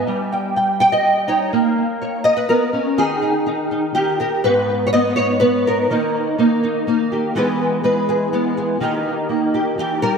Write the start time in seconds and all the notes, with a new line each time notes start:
0.07 G3
0.32 G5
0.56 G5
0.80 G5
0.92 D#5
1.28 D#4 C#5
1.53 A#3
2.02 C#5
2.24 D#5
2.37 B4
2.49 B3 A#4
2.73 C#4
2.98 D#3 G#4
3.22 D#4
3.46 D#4
3.71 D#4
3.95 D#3 G4
4.20 G4 A#4
4.44 G#2 B3 D#4 B4
4.87 C#5
4.93 B3 D#5
5.16 C#5
5.40 B3 B4
5.67 A#4
5.90 D#3 A#3 D#4
6.38 A#3 D#4
6.63 D#4
6.87 A#3 D#4
7.12 G4
7.35 E3 G#3 B3 G#4 B4
7.83 G#3 B4
8.09 G#4
8.33 G#3 B3
8.57 G#4
8.80 D#3 A#3 D#4 G4 A#4
9.29 A#3
9.54 G4
9.78 E3 G4
10.02 G3 A#4